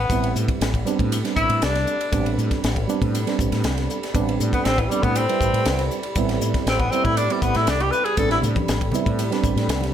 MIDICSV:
0, 0, Header, 1, 7, 480
1, 0, Start_track
1, 0, Key_signature, 0, "minor"
1, 0, Tempo, 504626
1, 91, Time_signature, 4, 2, 24, 8
1, 9451, End_track
2, 0, Start_track
2, 0, Title_t, "Analog synth pad"
2, 0, Program_c, 0, 89
2, 96, Note_on_c, 0, 67, 79
2, 96, Note_on_c, 0, 69, 68
2, 97, Note_on_c, 0, 74, 69
2, 99, Note_on_c, 0, 83, 90
2, 9451, Note_off_c, 0, 67, 0
2, 9451, Note_off_c, 0, 69, 0
2, 9451, Note_off_c, 0, 74, 0
2, 9451, Note_off_c, 0, 83, 0
2, 9451, End_track
3, 0, Start_track
3, 0, Title_t, "Reed electric piano"
3, 0, Program_c, 1, 4
3, 91, Note_on_c, 1, 55, 68
3, 97, Note_on_c, 1, 59, 65
3, 103, Note_on_c, 1, 60, 66
3, 112, Note_on_c, 1, 64, 75
3, 679, Note_off_c, 1, 55, 0
3, 682, Note_off_c, 1, 59, 0
3, 685, Note_off_c, 1, 60, 0
3, 689, Note_off_c, 1, 64, 0
3, 812, Note_on_c, 1, 55, 81
3, 821, Note_on_c, 1, 59, 70
3, 821, Note_on_c, 1, 60, 72
3, 833, Note_on_c, 1, 62, 87
3, 1107, Note_off_c, 1, 55, 0
3, 1111, Note_off_c, 1, 59, 0
3, 1111, Note_off_c, 1, 60, 0
3, 1117, Note_off_c, 1, 62, 0
3, 1179, Note_on_c, 1, 55, 68
3, 1183, Note_on_c, 1, 59, 55
3, 1189, Note_on_c, 1, 60, 58
3, 1196, Note_on_c, 1, 62, 67
3, 1858, Note_off_c, 1, 55, 0
3, 1860, Note_off_c, 1, 59, 0
3, 1863, Note_off_c, 1, 60, 0
3, 1866, Note_off_c, 1, 62, 0
3, 2012, Note_on_c, 1, 55, 67
3, 2021, Note_on_c, 1, 59, 64
3, 2025, Note_on_c, 1, 60, 63
3, 2031, Note_on_c, 1, 62, 78
3, 2601, Note_off_c, 1, 55, 0
3, 2605, Note_off_c, 1, 59, 0
3, 2607, Note_off_c, 1, 60, 0
3, 2610, Note_off_c, 1, 62, 0
3, 2737, Note_on_c, 1, 55, 80
3, 2746, Note_on_c, 1, 59, 71
3, 2753, Note_on_c, 1, 60, 74
3, 2756, Note_on_c, 1, 62, 94
3, 3031, Note_off_c, 1, 55, 0
3, 3036, Note_off_c, 1, 59, 0
3, 3039, Note_off_c, 1, 60, 0
3, 3041, Note_off_c, 1, 62, 0
3, 3106, Note_on_c, 1, 55, 73
3, 3111, Note_on_c, 1, 59, 65
3, 3115, Note_on_c, 1, 60, 66
3, 3123, Note_on_c, 1, 62, 79
3, 3782, Note_off_c, 1, 55, 0
3, 3785, Note_off_c, 1, 59, 0
3, 3787, Note_off_c, 1, 60, 0
3, 3791, Note_off_c, 1, 62, 0
3, 3936, Note_on_c, 1, 55, 78
3, 3942, Note_on_c, 1, 59, 75
3, 3949, Note_on_c, 1, 60, 77
3, 3952, Note_on_c, 1, 62, 93
3, 4524, Note_off_c, 1, 55, 0
3, 4526, Note_off_c, 1, 59, 0
3, 4530, Note_off_c, 1, 60, 0
3, 4531, Note_off_c, 1, 62, 0
3, 4665, Note_on_c, 1, 55, 67
3, 4666, Note_on_c, 1, 59, 62
3, 4675, Note_on_c, 1, 60, 66
3, 4679, Note_on_c, 1, 62, 71
3, 4955, Note_off_c, 1, 55, 0
3, 4956, Note_off_c, 1, 59, 0
3, 4960, Note_off_c, 1, 60, 0
3, 4962, Note_off_c, 1, 62, 0
3, 5029, Note_on_c, 1, 55, 64
3, 5034, Note_on_c, 1, 71, 56
3, 5043, Note_on_c, 1, 60, 53
3, 5045, Note_on_c, 1, 64, 72
3, 5703, Note_off_c, 1, 55, 0
3, 5706, Note_off_c, 1, 71, 0
3, 5711, Note_off_c, 1, 60, 0
3, 5711, Note_off_c, 1, 64, 0
3, 5867, Note_on_c, 1, 55, 84
3, 5872, Note_on_c, 1, 59, 81
3, 5874, Note_on_c, 1, 60, 76
3, 5884, Note_on_c, 1, 64, 86
3, 6448, Note_off_c, 1, 55, 0
3, 6450, Note_off_c, 1, 59, 0
3, 6452, Note_off_c, 1, 60, 0
3, 6456, Note_off_c, 1, 64, 0
3, 6586, Note_on_c, 1, 55, 62
3, 6587, Note_on_c, 1, 59, 61
3, 6594, Note_on_c, 1, 60, 61
3, 6603, Note_on_c, 1, 64, 74
3, 6875, Note_off_c, 1, 55, 0
3, 6875, Note_off_c, 1, 59, 0
3, 6879, Note_off_c, 1, 60, 0
3, 6883, Note_off_c, 1, 64, 0
3, 6939, Note_on_c, 1, 55, 59
3, 6950, Note_on_c, 1, 59, 57
3, 6951, Note_on_c, 1, 60, 59
3, 6960, Note_on_c, 1, 64, 70
3, 7617, Note_off_c, 1, 55, 0
3, 7623, Note_off_c, 1, 59, 0
3, 7623, Note_off_c, 1, 60, 0
3, 7627, Note_off_c, 1, 64, 0
3, 7769, Note_on_c, 1, 55, 69
3, 7772, Note_on_c, 1, 59, 60
3, 7784, Note_on_c, 1, 60, 58
3, 7787, Note_on_c, 1, 62, 74
3, 8358, Note_off_c, 1, 55, 0
3, 8359, Note_off_c, 1, 59, 0
3, 8365, Note_off_c, 1, 60, 0
3, 8366, Note_off_c, 1, 62, 0
3, 8489, Note_on_c, 1, 55, 77
3, 8496, Note_on_c, 1, 59, 78
3, 8506, Note_on_c, 1, 60, 67
3, 8509, Note_on_c, 1, 64, 92
3, 8785, Note_off_c, 1, 55, 0
3, 8788, Note_off_c, 1, 59, 0
3, 8793, Note_off_c, 1, 60, 0
3, 8795, Note_off_c, 1, 64, 0
3, 8853, Note_on_c, 1, 55, 78
3, 8859, Note_on_c, 1, 59, 73
3, 8866, Note_on_c, 1, 60, 68
3, 8874, Note_on_c, 1, 62, 85
3, 9451, Note_off_c, 1, 55, 0
3, 9451, Note_off_c, 1, 59, 0
3, 9451, Note_off_c, 1, 60, 0
3, 9451, Note_off_c, 1, 62, 0
3, 9451, End_track
4, 0, Start_track
4, 0, Title_t, "Tenor saxophone"
4, 0, Program_c, 2, 66
4, 0, Note_on_c, 2, 59, 82
4, 335, Note_off_c, 2, 59, 0
4, 1294, Note_on_c, 2, 64, 99
4, 1553, Note_on_c, 2, 62, 83
4, 1567, Note_off_c, 2, 64, 0
4, 2266, Note_off_c, 2, 62, 0
4, 4313, Note_on_c, 2, 59, 78
4, 4418, Note_on_c, 2, 60, 90
4, 4433, Note_off_c, 2, 59, 0
4, 4561, Note_on_c, 2, 52, 58
4, 4575, Note_off_c, 2, 60, 0
4, 4651, Note_on_c, 2, 55, 84
4, 4666, Note_off_c, 2, 52, 0
4, 4784, Note_on_c, 2, 59, 82
4, 4798, Note_off_c, 2, 55, 0
4, 4917, Note_on_c, 2, 60, 86
4, 4931, Note_off_c, 2, 59, 0
4, 5628, Note_off_c, 2, 60, 0
4, 6358, Note_on_c, 2, 60, 78
4, 6467, Note_on_c, 2, 59, 79
4, 6482, Note_off_c, 2, 60, 0
4, 6572, Note_on_c, 2, 60, 82
4, 6586, Note_off_c, 2, 59, 0
4, 6695, Note_on_c, 2, 64, 92
4, 6709, Note_off_c, 2, 60, 0
4, 6819, Note_on_c, 2, 62, 84
4, 6833, Note_off_c, 2, 64, 0
4, 6959, Note_on_c, 2, 55, 49
4, 6973, Note_off_c, 2, 62, 0
4, 7058, Note_on_c, 2, 59, 82
4, 7072, Note_off_c, 2, 55, 0
4, 7192, Note_on_c, 2, 64, 96
4, 7206, Note_off_c, 2, 59, 0
4, 7316, Note_on_c, 2, 62, 88
4, 7330, Note_off_c, 2, 64, 0
4, 7436, Note_on_c, 2, 67, 80
4, 7450, Note_off_c, 2, 62, 0
4, 7524, Note_on_c, 2, 71, 112
4, 7538, Note_off_c, 2, 67, 0
4, 7649, Note_on_c, 2, 68, 85
4, 7664, Note_off_c, 2, 71, 0
4, 7772, Note_on_c, 2, 69, 93
4, 7786, Note_off_c, 2, 68, 0
4, 7899, Note_off_c, 2, 69, 0
4, 7907, Note_on_c, 2, 64, 85
4, 7975, Note_off_c, 2, 64, 0
4, 9451, End_track
5, 0, Start_track
5, 0, Title_t, "Fretless electric bass"
5, 0, Program_c, 3, 35
5, 92, Note_on_c, 3, 33, 84
5, 306, Note_off_c, 3, 33, 0
5, 339, Note_on_c, 3, 45, 73
5, 447, Note_off_c, 3, 45, 0
5, 580, Note_on_c, 3, 33, 78
5, 791, Note_off_c, 3, 33, 0
5, 949, Note_on_c, 3, 45, 84
5, 1159, Note_off_c, 3, 45, 0
5, 1300, Note_on_c, 3, 33, 78
5, 1409, Note_off_c, 3, 33, 0
5, 1421, Note_on_c, 3, 45, 78
5, 1524, Note_off_c, 3, 45, 0
5, 1546, Note_on_c, 3, 36, 89
5, 1756, Note_off_c, 3, 36, 0
5, 2023, Note_on_c, 3, 33, 98
5, 2235, Note_off_c, 3, 33, 0
5, 2262, Note_on_c, 3, 45, 82
5, 2371, Note_off_c, 3, 45, 0
5, 2510, Note_on_c, 3, 33, 84
5, 2719, Note_off_c, 3, 33, 0
5, 2867, Note_on_c, 3, 45, 82
5, 3079, Note_off_c, 3, 45, 0
5, 3226, Note_on_c, 3, 33, 83
5, 3334, Note_off_c, 3, 33, 0
5, 3349, Note_on_c, 3, 45, 78
5, 3450, Note_off_c, 3, 45, 0
5, 3464, Note_on_c, 3, 36, 82
5, 3676, Note_off_c, 3, 36, 0
5, 3943, Note_on_c, 3, 33, 103
5, 4156, Note_off_c, 3, 33, 0
5, 4189, Note_on_c, 3, 45, 84
5, 4296, Note_off_c, 3, 45, 0
5, 4428, Note_on_c, 3, 33, 83
5, 4638, Note_off_c, 3, 33, 0
5, 4784, Note_on_c, 3, 45, 84
5, 4998, Note_off_c, 3, 45, 0
5, 5144, Note_on_c, 3, 33, 76
5, 5253, Note_off_c, 3, 33, 0
5, 5265, Note_on_c, 3, 45, 90
5, 5368, Note_off_c, 3, 45, 0
5, 5387, Note_on_c, 3, 36, 89
5, 5597, Note_off_c, 3, 36, 0
5, 5859, Note_on_c, 3, 33, 93
5, 6073, Note_off_c, 3, 33, 0
5, 6095, Note_on_c, 3, 45, 74
5, 6208, Note_off_c, 3, 45, 0
5, 6338, Note_on_c, 3, 33, 84
5, 6552, Note_off_c, 3, 33, 0
5, 6700, Note_on_c, 3, 45, 77
5, 6915, Note_off_c, 3, 45, 0
5, 7061, Note_on_c, 3, 33, 78
5, 7171, Note_off_c, 3, 33, 0
5, 7187, Note_on_c, 3, 45, 81
5, 7288, Note_off_c, 3, 45, 0
5, 7301, Note_on_c, 3, 36, 89
5, 7513, Note_off_c, 3, 36, 0
5, 7778, Note_on_c, 3, 33, 88
5, 7991, Note_off_c, 3, 33, 0
5, 8022, Note_on_c, 3, 45, 82
5, 8130, Note_off_c, 3, 45, 0
5, 8264, Note_on_c, 3, 33, 82
5, 8474, Note_off_c, 3, 33, 0
5, 8620, Note_on_c, 3, 45, 85
5, 8834, Note_off_c, 3, 45, 0
5, 8974, Note_on_c, 3, 33, 78
5, 9085, Note_off_c, 3, 33, 0
5, 9096, Note_on_c, 3, 45, 85
5, 9201, Note_off_c, 3, 45, 0
5, 9211, Note_on_c, 3, 36, 92
5, 9426, Note_off_c, 3, 36, 0
5, 9451, End_track
6, 0, Start_track
6, 0, Title_t, "Muted fretless electric bass strokes"
6, 460, Note_on_c, 9, 29, 34
6, 555, Note_off_c, 9, 29, 0
6, 2390, Note_on_c, 9, 29, 36
6, 2485, Note_off_c, 9, 29, 0
6, 6222, Note_on_c, 9, 29, 36
6, 6317, Note_off_c, 9, 29, 0
6, 8142, Note_on_c, 9, 29, 35
6, 8237, Note_off_c, 9, 29, 0
6, 9451, End_track
7, 0, Start_track
7, 0, Title_t, "Drums"
7, 93, Note_on_c, 9, 36, 99
7, 99, Note_on_c, 9, 44, 73
7, 99, Note_on_c, 9, 51, 74
7, 188, Note_off_c, 9, 36, 0
7, 194, Note_off_c, 9, 44, 0
7, 194, Note_off_c, 9, 51, 0
7, 224, Note_on_c, 9, 51, 54
7, 319, Note_off_c, 9, 51, 0
7, 341, Note_on_c, 9, 44, 75
7, 436, Note_off_c, 9, 44, 0
7, 461, Note_on_c, 9, 36, 78
7, 462, Note_on_c, 9, 51, 60
7, 556, Note_off_c, 9, 36, 0
7, 557, Note_off_c, 9, 51, 0
7, 584, Note_on_c, 9, 44, 77
7, 584, Note_on_c, 9, 51, 80
7, 592, Note_on_c, 9, 38, 101
7, 679, Note_off_c, 9, 44, 0
7, 679, Note_off_c, 9, 51, 0
7, 687, Note_off_c, 9, 38, 0
7, 703, Note_on_c, 9, 36, 69
7, 708, Note_on_c, 9, 51, 58
7, 798, Note_off_c, 9, 36, 0
7, 804, Note_off_c, 9, 51, 0
7, 823, Note_on_c, 9, 44, 81
7, 919, Note_off_c, 9, 44, 0
7, 945, Note_on_c, 9, 36, 77
7, 950, Note_on_c, 9, 51, 57
7, 1040, Note_off_c, 9, 36, 0
7, 1045, Note_off_c, 9, 51, 0
7, 1066, Note_on_c, 9, 44, 87
7, 1066, Note_on_c, 9, 51, 82
7, 1162, Note_off_c, 9, 44, 0
7, 1162, Note_off_c, 9, 51, 0
7, 1187, Note_on_c, 9, 51, 57
7, 1196, Note_on_c, 9, 38, 30
7, 1282, Note_off_c, 9, 51, 0
7, 1291, Note_off_c, 9, 38, 0
7, 1298, Note_on_c, 9, 44, 74
7, 1299, Note_on_c, 9, 36, 80
7, 1393, Note_off_c, 9, 44, 0
7, 1394, Note_off_c, 9, 36, 0
7, 1422, Note_on_c, 9, 51, 68
7, 1517, Note_off_c, 9, 51, 0
7, 1540, Note_on_c, 9, 44, 90
7, 1540, Note_on_c, 9, 51, 90
7, 1549, Note_on_c, 9, 38, 113
7, 1635, Note_off_c, 9, 44, 0
7, 1635, Note_off_c, 9, 51, 0
7, 1644, Note_off_c, 9, 38, 0
7, 1668, Note_on_c, 9, 51, 59
7, 1677, Note_on_c, 9, 38, 30
7, 1763, Note_off_c, 9, 51, 0
7, 1772, Note_off_c, 9, 38, 0
7, 1778, Note_on_c, 9, 44, 71
7, 1873, Note_off_c, 9, 44, 0
7, 1909, Note_on_c, 9, 51, 64
7, 2004, Note_off_c, 9, 51, 0
7, 2022, Note_on_c, 9, 36, 105
7, 2022, Note_on_c, 9, 44, 76
7, 2022, Note_on_c, 9, 51, 78
7, 2117, Note_off_c, 9, 44, 0
7, 2117, Note_off_c, 9, 51, 0
7, 2118, Note_off_c, 9, 36, 0
7, 2151, Note_on_c, 9, 51, 58
7, 2246, Note_off_c, 9, 51, 0
7, 2268, Note_on_c, 9, 44, 71
7, 2363, Note_off_c, 9, 44, 0
7, 2388, Note_on_c, 9, 36, 72
7, 2389, Note_on_c, 9, 51, 60
7, 2397, Note_on_c, 9, 38, 31
7, 2483, Note_off_c, 9, 36, 0
7, 2484, Note_off_c, 9, 51, 0
7, 2493, Note_off_c, 9, 38, 0
7, 2509, Note_on_c, 9, 44, 81
7, 2509, Note_on_c, 9, 51, 73
7, 2517, Note_on_c, 9, 38, 102
7, 2604, Note_off_c, 9, 44, 0
7, 2604, Note_off_c, 9, 51, 0
7, 2612, Note_off_c, 9, 38, 0
7, 2627, Note_on_c, 9, 36, 73
7, 2630, Note_on_c, 9, 51, 56
7, 2722, Note_off_c, 9, 36, 0
7, 2725, Note_off_c, 9, 51, 0
7, 2749, Note_on_c, 9, 44, 84
7, 2844, Note_off_c, 9, 44, 0
7, 2869, Note_on_c, 9, 36, 75
7, 2873, Note_on_c, 9, 51, 58
7, 2964, Note_off_c, 9, 36, 0
7, 2968, Note_off_c, 9, 51, 0
7, 2993, Note_on_c, 9, 44, 79
7, 2993, Note_on_c, 9, 51, 79
7, 3088, Note_off_c, 9, 44, 0
7, 3088, Note_off_c, 9, 51, 0
7, 3112, Note_on_c, 9, 51, 52
7, 3120, Note_on_c, 9, 38, 30
7, 3207, Note_off_c, 9, 51, 0
7, 3215, Note_off_c, 9, 38, 0
7, 3224, Note_on_c, 9, 36, 79
7, 3232, Note_on_c, 9, 44, 75
7, 3319, Note_off_c, 9, 36, 0
7, 3327, Note_off_c, 9, 44, 0
7, 3350, Note_on_c, 9, 51, 61
7, 3359, Note_on_c, 9, 38, 32
7, 3445, Note_off_c, 9, 51, 0
7, 3454, Note_off_c, 9, 38, 0
7, 3462, Note_on_c, 9, 44, 90
7, 3462, Note_on_c, 9, 51, 83
7, 3470, Note_on_c, 9, 38, 110
7, 3557, Note_off_c, 9, 44, 0
7, 3557, Note_off_c, 9, 51, 0
7, 3566, Note_off_c, 9, 38, 0
7, 3591, Note_on_c, 9, 51, 58
7, 3600, Note_on_c, 9, 38, 29
7, 3686, Note_off_c, 9, 51, 0
7, 3695, Note_off_c, 9, 38, 0
7, 3708, Note_on_c, 9, 44, 74
7, 3803, Note_off_c, 9, 44, 0
7, 3836, Note_on_c, 9, 51, 54
7, 3845, Note_on_c, 9, 38, 33
7, 3931, Note_off_c, 9, 51, 0
7, 3940, Note_off_c, 9, 38, 0
7, 3943, Note_on_c, 9, 36, 90
7, 3944, Note_on_c, 9, 44, 79
7, 3944, Note_on_c, 9, 51, 73
7, 4038, Note_off_c, 9, 36, 0
7, 4039, Note_off_c, 9, 44, 0
7, 4039, Note_off_c, 9, 51, 0
7, 4077, Note_on_c, 9, 51, 53
7, 4172, Note_off_c, 9, 51, 0
7, 4188, Note_on_c, 9, 44, 71
7, 4283, Note_off_c, 9, 44, 0
7, 4308, Note_on_c, 9, 36, 76
7, 4315, Note_on_c, 9, 51, 59
7, 4403, Note_off_c, 9, 36, 0
7, 4410, Note_off_c, 9, 51, 0
7, 4425, Note_on_c, 9, 44, 75
7, 4425, Note_on_c, 9, 51, 81
7, 4434, Note_on_c, 9, 38, 101
7, 4520, Note_off_c, 9, 44, 0
7, 4520, Note_off_c, 9, 51, 0
7, 4529, Note_off_c, 9, 38, 0
7, 4548, Note_on_c, 9, 36, 73
7, 4553, Note_on_c, 9, 51, 61
7, 4644, Note_off_c, 9, 36, 0
7, 4648, Note_off_c, 9, 51, 0
7, 4673, Note_on_c, 9, 44, 84
7, 4768, Note_off_c, 9, 44, 0
7, 4787, Note_on_c, 9, 36, 79
7, 4793, Note_on_c, 9, 51, 62
7, 4883, Note_off_c, 9, 36, 0
7, 4889, Note_off_c, 9, 51, 0
7, 4903, Note_on_c, 9, 44, 92
7, 4903, Note_on_c, 9, 51, 85
7, 4998, Note_off_c, 9, 44, 0
7, 4998, Note_off_c, 9, 51, 0
7, 5034, Note_on_c, 9, 51, 61
7, 5129, Note_off_c, 9, 51, 0
7, 5143, Note_on_c, 9, 36, 78
7, 5149, Note_on_c, 9, 44, 76
7, 5238, Note_off_c, 9, 36, 0
7, 5244, Note_off_c, 9, 44, 0
7, 5271, Note_on_c, 9, 51, 66
7, 5366, Note_off_c, 9, 51, 0
7, 5379, Note_on_c, 9, 44, 85
7, 5379, Note_on_c, 9, 51, 93
7, 5387, Note_on_c, 9, 38, 114
7, 5474, Note_off_c, 9, 44, 0
7, 5474, Note_off_c, 9, 51, 0
7, 5482, Note_off_c, 9, 38, 0
7, 5504, Note_on_c, 9, 51, 64
7, 5513, Note_on_c, 9, 38, 32
7, 5599, Note_off_c, 9, 51, 0
7, 5608, Note_off_c, 9, 38, 0
7, 5620, Note_on_c, 9, 44, 75
7, 5716, Note_off_c, 9, 44, 0
7, 5738, Note_on_c, 9, 51, 59
7, 5833, Note_off_c, 9, 51, 0
7, 5854, Note_on_c, 9, 44, 80
7, 5854, Note_on_c, 9, 51, 77
7, 5858, Note_on_c, 9, 36, 102
7, 5949, Note_off_c, 9, 44, 0
7, 5949, Note_off_c, 9, 51, 0
7, 5953, Note_off_c, 9, 36, 0
7, 5983, Note_on_c, 9, 51, 58
7, 5991, Note_on_c, 9, 38, 29
7, 6078, Note_off_c, 9, 51, 0
7, 6086, Note_off_c, 9, 38, 0
7, 6098, Note_on_c, 9, 44, 84
7, 6193, Note_off_c, 9, 44, 0
7, 6224, Note_on_c, 9, 36, 76
7, 6225, Note_on_c, 9, 51, 59
7, 6233, Note_on_c, 9, 38, 28
7, 6319, Note_off_c, 9, 36, 0
7, 6320, Note_off_c, 9, 51, 0
7, 6328, Note_off_c, 9, 38, 0
7, 6344, Note_on_c, 9, 44, 85
7, 6344, Note_on_c, 9, 51, 72
7, 6352, Note_on_c, 9, 38, 101
7, 6439, Note_off_c, 9, 44, 0
7, 6439, Note_off_c, 9, 51, 0
7, 6447, Note_off_c, 9, 38, 0
7, 6464, Note_on_c, 9, 36, 73
7, 6465, Note_on_c, 9, 51, 53
7, 6559, Note_off_c, 9, 36, 0
7, 6560, Note_off_c, 9, 51, 0
7, 6583, Note_on_c, 9, 44, 77
7, 6678, Note_off_c, 9, 44, 0
7, 6703, Note_on_c, 9, 36, 75
7, 6705, Note_on_c, 9, 51, 59
7, 6799, Note_off_c, 9, 36, 0
7, 6800, Note_off_c, 9, 51, 0
7, 6820, Note_on_c, 9, 44, 86
7, 6820, Note_on_c, 9, 51, 80
7, 6915, Note_off_c, 9, 44, 0
7, 6915, Note_off_c, 9, 51, 0
7, 6945, Note_on_c, 9, 51, 54
7, 7040, Note_off_c, 9, 51, 0
7, 7057, Note_on_c, 9, 44, 71
7, 7058, Note_on_c, 9, 36, 78
7, 7152, Note_off_c, 9, 44, 0
7, 7153, Note_off_c, 9, 36, 0
7, 7177, Note_on_c, 9, 51, 63
7, 7185, Note_on_c, 9, 38, 32
7, 7272, Note_off_c, 9, 51, 0
7, 7280, Note_off_c, 9, 38, 0
7, 7295, Note_on_c, 9, 44, 88
7, 7295, Note_on_c, 9, 51, 82
7, 7304, Note_on_c, 9, 38, 110
7, 7390, Note_off_c, 9, 44, 0
7, 7390, Note_off_c, 9, 51, 0
7, 7399, Note_off_c, 9, 38, 0
7, 7422, Note_on_c, 9, 51, 56
7, 7517, Note_off_c, 9, 51, 0
7, 7537, Note_on_c, 9, 44, 77
7, 7632, Note_off_c, 9, 44, 0
7, 7662, Note_on_c, 9, 51, 57
7, 7757, Note_off_c, 9, 51, 0
7, 7772, Note_on_c, 9, 44, 74
7, 7772, Note_on_c, 9, 51, 75
7, 7776, Note_on_c, 9, 36, 102
7, 7867, Note_off_c, 9, 44, 0
7, 7867, Note_off_c, 9, 51, 0
7, 7871, Note_off_c, 9, 36, 0
7, 7903, Note_on_c, 9, 51, 53
7, 7912, Note_on_c, 9, 38, 29
7, 7998, Note_off_c, 9, 51, 0
7, 8007, Note_off_c, 9, 38, 0
7, 8011, Note_on_c, 9, 64, 64
7, 8019, Note_on_c, 9, 44, 78
7, 8106, Note_off_c, 9, 64, 0
7, 8115, Note_off_c, 9, 44, 0
7, 8139, Note_on_c, 9, 63, 71
7, 8142, Note_on_c, 9, 36, 72
7, 8146, Note_on_c, 9, 51, 51
7, 8234, Note_off_c, 9, 63, 0
7, 8237, Note_off_c, 9, 36, 0
7, 8241, Note_off_c, 9, 51, 0
7, 8259, Note_on_c, 9, 44, 80
7, 8259, Note_on_c, 9, 51, 75
7, 8268, Note_on_c, 9, 38, 103
7, 8354, Note_off_c, 9, 44, 0
7, 8354, Note_off_c, 9, 51, 0
7, 8363, Note_off_c, 9, 38, 0
7, 8382, Note_on_c, 9, 36, 71
7, 8384, Note_on_c, 9, 51, 56
7, 8477, Note_off_c, 9, 36, 0
7, 8479, Note_off_c, 9, 51, 0
7, 8481, Note_on_c, 9, 64, 74
7, 8503, Note_on_c, 9, 44, 83
7, 8576, Note_off_c, 9, 64, 0
7, 8598, Note_off_c, 9, 44, 0
7, 8621, Note_on_c, 9, 36, 71
7, 8625, Note_on_c, 9, 51, 58
7, 8716, Note_off_c, 9, 36, 0
7, 8720, Note_off_c, 9, 51, 0
7, 8739, Note_on_c, 9, 44, 81
7, 8739, Note_on_c, 9, 51, 88
7, 8834, Note_off_c, 9, 44, 0
7, 8834, Note_off_c, 9, 51, 0
7, 8868, Note_on_c, 9, 51, 58
7, 8876, Note_on_c, 9, 38, 26
7, 8963, Note_off_c, 9, 51, 0
7, 8971, Note_off_c, 9, 38, 0
7, 8975, Note_on_c, 9, 36, 78
7, 8975, Note_on_c, 9, 44, 82
7, 9070, Note_off_c, 9, 36, 0
7, 9070, Note_off_c, 9, 44, 0
7, 9107, Note_on_c, 9, 51, 62
7, 9116, Note_on_c, 9, 38, 30
7, 9202, Note_off_c, 9, 51, 0
7, 9211, Note_off_c, 9, 38, 0
7, 9219, Note_on_c, 9, 44, 88
7, 9219, Note_on_c, 9, 51, 88
7, 9228, Note_on_c, 9, 38, 114
7, 9314, Note_off_c, 9, 44, 0
7, 9314, Note_off_c, 9, 51, 0
7, 9323, Note_off_c, 9, 38, 0
7, 9329, Note_on_c, 9, 63, 59
7, 9354, Note_on_c, 9, 51, 61
7, 9363, Note_on_c, 9, 38, 30
7, 9424, Note_off_c, 9, 63, 0
7, 9449, Note_off_c, 9, 51, 0
7, 9451, Note_off_c, 9, 38, 0
7, 9451, End_track
0, 0, End_of_file